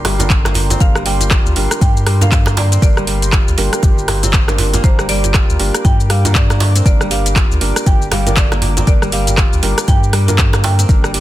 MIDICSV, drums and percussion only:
0, 0, Header, 1, 3, 480
1, 0, Start_track
1, 0, Key_signature, -2, "minor"
1, 0, Tempo, 504202
1, 766, Time_signature, 4, 2, 24, 8
1, 10663, End_track
2, 0, Start_track
2, 0, Title_t, "Djembe"
2, 47, Note_on_c, 9, 62, 80
2, 142, Note_off_c, 9, 62, 0
2, 184, Note_on_c, 9, 63, 86
2, 280, Note_off_c, 9, 63, 0
2, 438, Note_on_c, 9, 62, 85
2, 519, Note_on_c, 9, 63, 89
2, 533, Note_off_c, 9, 62, 0
2, 614, Note_off_c, 9, 63, 0
2, 671, Note_on_c, 9, 63, 101
2, 766, Note_off_c, 9, 63, 0
2, 1145, Note_on_c, 9, 63, 60
2, 1240, Note_off_c, 9, 63, 0
2, 1728, Note_on_c, 9, 63, 84
2, 1823, Note_off_c, 9, 63, 0
2, 2106, Note_on_c, 9, 63, 87
2, 2201, Note_off_c, 9, 63, 0
2, 2340, Note_on_c, 9, 62, 86
2, 2435, Note_off_c, 9, 62, 0
2, 2449, Note_on_c, 9, 62, 117
2, 2544, Note_off_c, 9, 62, 0
2, 3643, Note_on_c, 9, 63, 84
2, 3738, Note_off_c, 9, 63, 0
2, 3885, Note_on_c, 9, 62, 84
2, 3980, Note_off_c, 9, 62, 0
2, 4033, Note_on_c, 9, 63, 80
2, 4128, Note_off_c, 9, 63, 0
2, 4273, Note_on_c, 9, 62, 72
2, 4364, Note_on_c, 9, 63, 93
2, 4368, Note_off_c, 9, 62, 0
2, 4459, Note_off_c, 9, 63, 0
2, 4511, Note_on_c, 9, 63, 103
2, 4606, Note_off_c, 9, 63, 0
2, 4990, Note_on_c, 9, 63, 58
2, 5085, Note_off_c, 9, 63, 0
2, 5566, Note_on_c, 9, 63, 83
2, 5661, Note_off_c, 9, 63, 0
2, 5950, Note_on_c, 9, 63, 84
2, 6045, Note_off_c, 9, 63, 0
2, 6189, Note_on_c, 9, 62, 68
2, 6284, Note_off_c, 9, 62, 0
2, 6288, Note_on_c, 9, 62, 92
2, 6383, Note_off_c, 9, 62, 0
2, 7490, Note_on_c, 9, 63, 75
2, 7585, Note_off_c, 9, 63, 0
2, 7726, Note_on_c, 9, 62, 81
2, 7821, Note_off_c, 9, 62, 0
2, 7873, Note_on_c, 9, 63, 77
2, 7968, Note_off_c, 9, 63, 0
2, 8110, Note_on_c, 9, 62, 79
2, 8205, Note_on_c, 9, 63, 90
2, 8206, Note_off_c, 9, 62, 0
2, 8300, Note_off_c, 9, 63, 0
2, 8353, Note_on_c, 9, 63, 95
2, 8448, Note_off_c, 9, 63, 0
2, 8832, Note_on_c, 9, 63, 55
2, 8927, Note_off_c, 9, 63, 0
2, 9403, Note_on_c, 9, 63, 80
2, 9499, Note_off_c, 9, 63, 0
2, 9789, Note_on_c, 9, 63, 78
2, 9884, Note_off_c, 9, 63, 0
2, 10027, Note_on_c, 9, 62, 79
2, 10122, Note_off_c, 9, 62, 0
2, 10131, Note_on_c, 9, 62, 95
2, 10226, Note_off_c, 9, 62, 0
2, 10663, End_track
3, 0, Start_track
3, 0, Title_t, "Drums"
3, 46, Note_on_c, 9, 37, 82
3, 46, Note_on_c, 9, 46, 89
3, 141, Note_off_c, 9, 37, 0
3, 141, Note_off_c, 9, 46, 0
3, 189, Note_on_c, 9, 42, 55
3, 193, Note_on_c, 9, 82, 82
3, 284, Note_off_c, 9, 42, 0
3, 286, Note_on_c, 9, 39, 97
3, 286, Note_on_c, 9, 42, 44
3, 287, Note_on_c, 9, 36, 113
3, 288, Note_off_c, 9, 82, 0
3, 290, Note_on_c, 9, 82, 69
3, 381, Note_off_c, 9, 39, 0
3, 381, Note_off_c, 9, 42, 0
3, 382, Note_off_c, 9, 36, 0
3, 385, Note_off_c, 9, 82, 0
3, 430, Note_on_c, 9, 37, 96
3, 434, Note_on_c, 9, 82, 42
3, 525, Note_off_c, 9, 37, 0
3, 526, Note_on_c, 9, 46, 88
3, 529, Note_off_c, 9, 82, 0
3, 621, Note_off_c, 9, 46, 0
3, 670, Note_on_c, 9, 42, 53
3, 674, Note_on_c, 9, 82, 85
3, 765, Note_off_c, 9, 42, 0
3, 765, Note_on_c, 9, 42, 44
3, 767, Note_on_c, 9, 36, 122
3, 769, Note_off_c, 9, 82, 0
3, 769, Note_on_c, 9, 82, 72
3, 861, Note_off_c, 9, 42, 0
3, 862, Note_off_c, 9, 36, 0
3, 865, Note_off_c, 9, 82, 0
3, 909, Note_on_c, 9, 37, 98
3, 913, Note_on_c, 9, 82, 44
3, 1004, Note_off_c, 9, 37, 0
3, 1006, Note_on_c, 9, 46, 91
3, 1008, Note_off_c, 9, 82, 0
3, 1101, Note_off_c, 9, 46, 0
3, 1149, Note_on_c, 9, 42, 53
3, 1153, Note_on_c, 9, 82, 82
3, 1244, Note_off_c, 9, 42, 0
3, 1246, Note_on_c, 9, 37, 83
3, 1246, Note_on_c, 9, 39, 101
3, 1246, Note_on_c, 9, 42, 42
3, 1247, Note_on_c, 9, 36, 113
3, 1248, Note_off_c, 9, 82, 0
3, 1250, Note_on_c, 9, 82, 69
3, 1341, Note_off_c, 9, 37, 0
3, 1341, Note_off_c, 9, 39, 0
3, 1341, Note_off_c, 9, 42, 0
3, 1342, Note_off_c, 9, 36, 0
3, 1345, Note_off_c, 9, 82, 0
3, 1393, Note_on_c, 9, 82, 42
3, 1485, Note_on_c, 9, 46, 92
3, 1488, Note_off_c, 9, 82, 0
3, 1581, Note_off_c, 9, 46, 0
3, 1629, Note_on_c, 9, 37, 97
3, 1629, Note_on_c, 9, 42, 56
3, 1633, Note_on_c, 9, 82, 89
3, 1724, Note_off_c, 9, 37, 0
3, 1724, Note_off_c, 9, 42, 0
3, 1727, Note_on_c, 9, 36, 118
3, 1727, Note_on_c, 9, 42, 46
3, 1728, Note_off_c, 9, 82, 0
3, 1731, Note_on_c, 9, 82, 74
3, 1822, Note_off_c, 9, 36, 0
3, 1822, Note_off_c, 9, 42, 0
3, 1826, Note_off_c, 9, 82, 0
3, 1874, Note_on_c, 9, 82, 40
3, 1966, Note_on_c, 9, 37, 81
3, 1966, Note_on_c, 9, 46, 84
3, 1969, Note_off_c, 9, 82, 0
3, 2061, Note_off_c, 9, 37, 0
3, 2061, Note_off_c, 9, 46, 0
3, 2110, Note_on_c, 9, 42, 54
3, 2114, Note_on_c, 9, 82, 82
3, 2205, Note_off_c, 9, 42, 0
3, 2206, Note_on_c, 9, 39, 97
3, 2206, Note_on_c, 9, 42, 44
3, 2207, Note_on_c, 9, 36, 113
3, 2209, Note_off_c, 9, 82, 0
3, 2210, Note_on_c, 9, 82, 70
3, 2301, Note_off_c, 9, 39, 0
3, 2301, Note_off_c, 9, 42, 0
3, 2302, Note_off_c, 9, 36, 0
3, 2305, Note_off_c, 9, 82, 0
3, 2350, Note_on_c, 9, 37, 97
3, 2354, Note_on_c, 9, 82, 43
3, 2445, Note_off_c, 9, 37, 0
3, 2447, Note_on_c, 9, 46, 88
3, 2450, Note_off_c, 9, 82, 0
3, 2542, Note_off_c, 9, 46, 0
3, 2590, Note_on_c, 9, 42, 54
3, 2594, Note_on_c, 9, 82, 84
3, 2685, Note_off_c, 9, 42, 0
3, 2686, Note_on_c, 9, 36, 127
3, 2687, Note_on_c, 9, 42, 44
3, 2689, Note_off_c, 9, 82, 0
3, 2691, Note_on_c, 9, 82, 69
3, 2782, Note_off_c, 9, 36, 0
3, 2782, Note_off_c, 9, 42, 0
3, 2786, Note_off_c, 9, 82, 0
3, 2829, Note_on_c, 9, 37, 92
3, 2833, Note_on_c, 9, 82, 43
3, 2925, Note_off_c, 9, 37, 0
3, 2926, Note_on_c, 9, 46, 90
3, 2929, Note_off_c, 9, 82, 0
3, 3021, Note_off_c, 9, 46, 0
3, 3069, Note_on_c, 9, 42, 55
3, 3073, Note_on_c, 9, 82, 83
3, 3165, Note_off_c, 9, 42, 0
3, 3166, Note_on_c, 9, 37, 78
3, 3166, Note_on_c, 9, 39, 106
3, 3166, Note_on_c, 9, 42, 45
3, 3167, Note_on_c, 9, 36, 108
3, 3169, Note_off_c, 9, 82, 0
3, 3170, Note_on_c, 9, 82, 67
3, 3261, Note_off_c, 9, 37, 0
3, 3261, Note_off_c, 9, 39, 0
3, 3261, Note_off_c, 9, 42, 0
3, 3262, Note_off_c, 9, 36, 0
3, 3265, Note_off_c, 9, 82, 0
3, 3313, Note_on_c, 9, 82, 41
3, 3405, Note_on_c, 9, 46, 89
3, 3408, Note_off_c, 9, 82, 0
3, 3501, Note_off_c, 9, 46, 0
3, 3549, Note_on_c, 9, 37, 94
3, 3549, Note_on_c, 9, 42, 57
3, 3553, Note_on_c, 9, 82, 84
3, 3644, Note_off_c, 9, 37, 0
3, 3644, Note_off_c, 9, 42, 0
3, 3645, Note_on_c, 9, 42, 46
3, 3646, Note_on_c, 9, 36, 116
3, 3648, Note_off_c, 9, 82, 0
3, 3649, Note_on_c, 9, 82, 72
3, 3740, Note_off_c, 9, 42, 0
3, 3742, Note_off_c, 9, 36, 0
3, 3744, Note_off_c, 9, 82, 0
3, 3793, Note_on_c, 9, 82, 41
3, 3885, Note_on_c, 9, 37, 74
3, 3885, Note_on_c, 9, 46, 84
3, 3888, Note_off_c, 9, 82, 0
3, 3980, Note_off_c, 9, 37, 0
3, 3980, Note_off_c, 9, 46, 0
3, 4028, Note_on_c, 9, 42, 56
3, 4032, Note_on_c, 9, 82, 80
3, 4123, Note_off_c, 9, 42, 0
3, 4125, Note_on_c, 9, 39, 107
3, 4125, Note_on_c, 9, 42, 44
3, 4126, Note_on_c, 9, 36, 111
3, 4127, Note_off_c, 9, 82, 0
3, 4129, Note_on_c, 9, 82, 71
3, 4220, Note_off_c, 9, 39, 0
3, 4220, Note_off_c, 9, 42, 0
3, 4222, Note_off_c, 9, 36, 0
3, 4224, Note_off_c, 9, 82, 0
3, 4267, Note_on_c, 9, 37, 93
3, 4271, Note_on_c, 9, 82, 42
3, 4362, Note_off_c, 9, 37, 0
3, 4364, Note_on_c, 9, 46, 87
3, 4366, Note_off_c, 9, 82, 0
3, 4460, Note_off_c, 9, 46, 0
3, 4508, Note_on_c, 9, 42, 54
3, 4512, Note_on_c, 9, 82, 84
3, 4603, Note_off_c, 9, 42, 0
3, 4606, Note_on_c, 9, 36, 120
3, 4606, Note_on_c, 9, 42, 45
3, 4607, Note_off_c, 9, 82, 0
3, 4610, Note_on_c, 9, 82, 66
3, 4701, Note_off_c, 9, 36, 0
3, 4701, Note_off_c, 9, 42, 0
3, 4705, Note_off_c, 9, 82, 0
3, 4749, Note_on_c, 9, 37, 93
3, 4753, Note_on_c, 9, 82, 40
3, 4844, Note_off_c, 9, 37, 0
3, 4844, Note_on_c, 9, 46, 87
3, 4848, Note_off_c, 9, 82, 0
3, 4940, Note_off_c, 9, 46, 0
3, 4988, Note_on_c, 9, 42, 55
3, 4992, Note_on_c, 9, 82, 77
3, 5083, Note_off_c, 9, 42, 0
3, 5085, Note_on_c, 9, 37, 78
3, 5085, Note_on_c, 9, 39, 106
3, 5085, Note_on_c, 9, 42, 47
3, 5087, Note_off_c, 9, 82, 0
3, 5087, Note_on_c, 9, 36, 108
3, 5089, Note_on_c, 9, 82, 66
3, 5181, Note_off_c, 9, 37, 0
3, 5181, Note_off_c, 9, 39, 0
3, 5181, Note_off_c, 9, 42, 0
3, 5182, Note_off_c, 9, 36, 0
3, 5185, Note_off_c, 9, 82, 0
3, 5234, Note_on_c, 9, 82, 40
3, 5327, Note_on_c, 9, 46, 92
3, 5329, Note_off_c, 9, 82, 0
3, 5422, Note_off_c, 9, 46, 0
3, 5469, Note_on_c, 9, 37, 92
3, 5469, Note_on_c, 9, 42, 59
3, 5473, Note_on_c, 9, 82, 83
3, 5564, Note_off_c, 9, 37, 0
3, 5564, Note_off_c, 9, 42, 0
3, 5567, Note_on_c, 9, 36, 113
3, 5567, Note_on_c, 9, 42, 46
3, 5568, Note_off_c, 9, 82, 0
3, 5571, Note_on_c, 9, 82, 71
3, 5662, Note_off_c, 9, 36, 0
3, 5662, Note_off_c, 9, 42, 0
3, 5666, Note_off_c, 9, 82, 0
3, 5714, Note_on_c, 9, 82, 39
3, 5807, Note_on_c, 9, 37, 76
3, 5807, Note_on_c, 9, 46, 84
3, 5809, Note_off_c, 9, 82, 0
3, 5902, Note_off_c, 9, 37, 0
3, 5902, Note_off_c, 9, 46, 0
3, 5950, Note_on_c, 9, 42, 57
3, 5955, Note_on_c, 9, 82, 82
3, 6046, Note_off_c, 9, 42, 0
3, 6047, Note_on_c, 9, 36, 110
3, 6047, Note_on_c, 9, 39, 107
3, 6047, Note_on_c, 9, 42, 44
3, 6050, Note_off_c, 9, 82, 0
3, 6051, Note_on_c, 9, 82, 68
3, 6142, Note_off_c, 9, 36, 0
3, 6142, Note_off_c, 9, 39, 0
3, 6142, Note_off_c, 9, 42, 0
3, 6146, Note_off_c, 9, 82, 0
3, 6191, Note_on_c, 9, 37, 91
3, 6195, Note_on_c, 9, 82, 41
3, 6286, Note_off_c, 9, 37, 0
3, 6287, Note_on_c, 9, 46, 85
3, 6290, Note_off_c, 9, 82, 0
3, 6382, Note_off_c, 9, 46, 0
3, 6431, Note_on_c, 9, 42, 59
3, 6435, Note_on_c, 9, 82, 79
3, 6526, Note_off_c, 9, 42, 0
3, 6527, Note_on_c, 9, 36, 118
3, 6528, Note_on_c, 9, 42, 46
3, 6530, Note_off_c, 9, 82, 0
3, 6532, Note_on_c, 9, 82, 62
3, 6622, Note_off_c, 9, 36, 0
3, 6623, Note_off_c, 9, 42, 0
3, 6627, Note_off_c, 9, 82, 0
3, 6671, Note_on_c, 9, 37, 94
3, 6675, Note_on_c, 9, 82, 40
3, 6766, Note_off_c, 9, 37, 0
3, 6768, Note_on_c, 9, 46, 93
3, 6770, Note_off_c, 9, 82, 0
3, 6863, Note_off_c, 9, 46, 0
3, 6911, Note_on_c, 9, 42, 58
3, 6915, Note_on_c, 9, 82, 74
3, 7006, Note_off_c, 9, 42, 0
3, 7006, Note_on_c, 9, 36, 104
3, 7008, Note_on_c, 9, 37, 73
3, 7008, Note_on_c, 9, 39, 110
3, 7008, Note_on_c, 9, 42, 48
3, 7010, Note_off_c, 9, 82, 0
3, 7012, Note_on_c, 9, 82, 65
3, 7102, Note_off_c, 9, 36, 0
3, 7103, Note_off_c, 9, 37, 0
3, 7103, Note_off_c, 9, 39, 0
3, 7103, Note_off_c, 9, 42, 0
3, 7107, Note_off_c, 9, 82, 0
3, 7155, Note_on_c, 9, 82, 39
3, 7246, Note_on_c, 9, 46, 93
3, 7250, Note_off_c, 9, 82, 0
3, 7341, Note_off_c, 9, 46, 0
3, 7390, Note_on_c, 9, 37, 91
3, 7390, Note_on_c, 9, 42, 61
3, 7394, Note_on_c, 9, 82, 79
3, 7485, Note_off_c, 9, 37, 0
3, 7485, Note_off_c, 9, 42, 0
3, 7486, Note_on_c, 9, 42, 50
3, 7487, Note_on_c, 9, 36, 109
3, 7489, Note_off_c, 9, 82, 0
3, 7491, Note_on_c, 9, 82, 66
3, 7582, Note_off_c, 9, 36, 0
3, 7582, Note_off_c, 9, 42, 0
3, 7586, Note_off_c, 9, 82, 0
3, 7634, Note_on_c, 9, 82, 40
3, 7726, Note_on_c, 9, 37, 74
3, 7726, Note_on_c, 9, 46, 88
3, 7729, Note_off_c, 9, 82, 0
3, 7821, Note_off_c, 9, 37, 0
3, 7821, Note_off_c, 9, 46, 0
3, 7870, Note_on_c, 9, 42, 60
3, 7874, Note_on_c, 9, 82, 80
3, 7965, Note_off_c, 9, 42, 0
3, 7965, Note_on_c, 9, 39, 109
3, 7965, Note_on_c, 9, 42, 49
3, 7966, Note_on_c, 9, 36, 105
3, 7969, Note_off_c, 9, 82, 0
3, 7969, Note_on_c, 9, 82, 64
3, 8061, Note_off_c, 9, 39, 0
3, 8061, Note_off_c, 9, 42, 0
3, 8062, Note_off_c, 9, 36, 0
3, 8065, Note_off_c, 9, 82, 0
3, 8109, Note_on_c, 9, 37, 91
3, 8113, Note_on_c, 9, 82, 39
3, 8204, Note_off_c, 9, 37, 0
3, 8205, Note_on_c, 9, 46, 91
3, 8208, Note_off_c, 9, 82, 0
3, 8300, Note_off_c, 9, 46, 0
3, 8348, Note_on_c, 9, 42, 61
3, 8352, Note_on_c, 9, 82, 79
3, 8444, Note_off_c, 9, 42, 0
3, 8446, Note_on_c, 9, 42, 49
3, 8447, Note_on_c, 9, 36, 117
3, 8448, Note_off_c, 9, 82, 0
3, 8450, Note_on_c, 9, 82, 63
3, 8541, Note_off_c, 9, 42, 0
3, 8542, Note_off_c, 9, 36, 0
3, 8545, Note_off_c, 9, 82, 0
3, 8589, Note_on_c, 9, 37, 94
3, 8593, Note_on_c, 9, 82, 39
3, 8684, Note_off_c, 9, 37, 0
3, 8685, Note_on_c, 9, 46, 97
3, 8688, Note_off_c, 9, 82, 0
3, 8780, Note_off_c, 9, 46, 0
3, 8828, Note_on_c, 9, 42, 60
3, 8832, Note_on_c, 9, 82, 78
3, 8923, Note_off_c, 9, 42, 0
3, 8925, Note_on_c, 9, 37, 79
3, 8925, Note_on_c, 9, 39, 107
3, 8925, Note_on_c, 9, 42, 47
3, 8926, Note_on_c, 9, 36, 100
3, 8927, Note_off_c, 9, 82, 0
3, 8929, Note_on_c, 9, 82, 63
3, 9020, Note_off_c, 9, 37, 0
3, 9020, Note_off_c, 9, 39, 0
3, 9020, Note_off_c, 9, 42, 0
3, 9022, Note_off_c, 9, 36, 0
3, 9024, Note_off_c, 9, 82, 0
3, 9072, Note_on_c, 9, 82, 38
3, 9166, Note_on_c, 9, 46, 95
3, 9167, Note_off_c, 9, 82, 0
3, 9261, Note_off_c, 9, 46, 0
3, 9308, Note_on_c, 9, 37, 98
3, 9308, Note_on_c, 9, 42, 62
3, 9313, Note_on_c, 9, 82, 77
3, 9404, Note_off_c, 9, 37, 0
3, 9404, Note_off_c, 9, 42, 0
3, 9405, Note_on_c, 9, 42, 50
3, 9406, Note_on_c, 9, 36, 107
3, 9408, Note_off_c, 9, 82, 0
3, 9409, Note_on_c, 9, 82, 66
3, 9500, Note_off_c, 9, 42, 0
3, 9502, Note_off_c, 9, 36, 0
3, 9504, Note_off_c, 9, 82, 0
3, 9553, Note_on_c, 9, 82, 37
3, 9645, Note_on_c, 9, 37, 74
3, 9645, Note_on_c, 9, 46, 94
3, 9649, Note_off_c, 9, 82, 0
3, 9740, Note_off_c, 9, 37, 0
3, 9740, Note_off_c, 9, 46, 0
3, 9789, Note_on_c, 9, 42, 61
3, 9793, Note_on_c, 9, 82, 77
3, 9884, Note_off_c, 9, 42, 0
3, 9886, Note_on_c, 9, 39, 107
3, 9886, Note_on_c, 9, 42, 49
3, 9887, Note_on_c, 9, 36, 104
3, 9888, Note_off_c, 9, 82, 0
3, 9890, Note_on_c, 9, 82, 62
3, 9981, Note_off_c, 9, 39, 0
3, 9981, Note_off_c, 9, 42, 0
3, 9982, Note_off_c, 9, 36, 0
3, 9985, Note_off_c, 9, 82, 0
3, 10030, Note_on_c, 9, 37, 97
3, 10034, Note_on_c, 9, 82, 40
3, 10125, Note_off_c, 9, 37, 0
3, 10127, Note_on_c, 9, 46, 92
3, 10130, Note_off_c, 9, 82, 0
3, 10222, Note_off_c, 9, 46, 0
3, 10271, Note_on_c, 9, 42, 59
3, 10275, Note_on_c, 9, 82, 78
3, 10366, Note_off_c, 9, 42, 0
3, 10367, Note_on_c, 9, 36, 113
3, 10368, Note_on_c, 9, 42, 48
3, 10370, Note_off_c, 9, 82, 0
3, 10372, Note_on_c, 9, 82, 66
3, 10462, Note_off_c, 9, 36, 0
3, 10463, Note_off_c, 9, 42, 0
3, 10467, Note_off_c, 9, 82, 0
3, 10510, Note_on_c, 9, 37, 98
3, 10514, Note_on_c, 9, 82, 40
3, 10605, Note_off_c, 9, 37, 0
3, 10607, Note_on_c, 9, 46, 99
3, 10609, Note_off_c, 9, 82, 0
3, 10663, Note_off_c, 9, 46, 0
3, 10663, End_track
0, 0, End_of_file